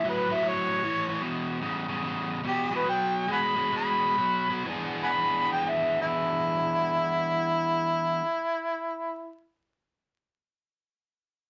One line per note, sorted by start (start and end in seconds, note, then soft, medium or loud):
0.04 0.27 A2 medium
0.04 0.28 F#3 medium
0.09 0.35 B4 medium
0.29 0.42 A2 medium
0.29 0.42 F#3 medium
0.33 0.50 E5 medium
0.43 0.80 A2 medium
0.43 0.81 F#3 medium
0.48 1.23 C#5 medium
0.83 1.06 A2 medium
0.83 1.07 E3 medium
1.09 1.21 A2 medium
1.09 1.21 E3 medium
1.22 1.59 E2 medium
1.22 1.60 B2 medium
1.61 1.85 E2 medium
1.61 1.86 C#3 medium
1.88 2.01 E2 medium
1.88 2.01 C#3 medium
2.02 2.40 E2 medium
2.02 2.41 C#3 medium
2.43 2.68 E2 medium
2.43 2.68 B2 medium
2.48 2.72 G4 medium
2.71 2.84 E2 medium
2.71 2.84 B2 medium
2.75 2.87 B4 medium
2.85 3.25 B2 medium
2.85 3.25 F#3 medium
2.90 3.29 G5 medium
3.28 3.54 B2 medium
3.28 3.54 G#3 medium
3.32 3.39 F#5 medium
3.32 3.38 G#5 medium
3.32 3.73 B5 medium
3.56 3.70 B2 medium
3.56 3.71 G#3 medium
3.72 4.15 B2 medium
3.72 4.15 G#3 medium
3.77 4.66 B5 medium
4.18 4.46 B2 medium
4.18 4.46 F#3 medium
4.50 4.65 B2 medium
4.50 4.64 F#3 medium
4.65 8.21 E3 medium
4.65 8.23 B3 medium
4.65 8.24 D4 medium
4.69 8.25 G#4 medium
5.04 5.10 F#5 medium
5.04 5.10 G#5 medium
5.04 5.49 B5 medium
5.52 5.71 G5 medium
5.69 5.99 E5 medium
6.02 9.40 E4 medium